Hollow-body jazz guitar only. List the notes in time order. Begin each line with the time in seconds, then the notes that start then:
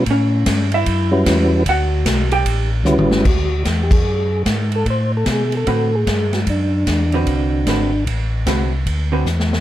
0.11 C#4 C#5
0.74 E4 E5
1.69 F#4 F#5
2.32 G4 G5
5.67 D3 C4 F#4 B4
7.14 D3 C4 F#4 B4
7.68 D3 C4 F#4 B4
8.47 D3 C4 F#4 B4
9.12 D3 C4 F#4 B4